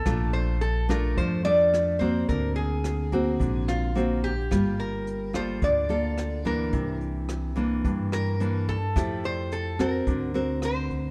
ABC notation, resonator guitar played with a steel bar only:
X:1
M:4/4
L:1/8
Q:1/4=108
K:Dm
V:1 name="Resonator guitar played with a steel bar"
A c A B c d2 c | ^A _A4 ^E2 G- | G B2 c d3 B- | B z4 B2 A- |
A c A B3 c2 |]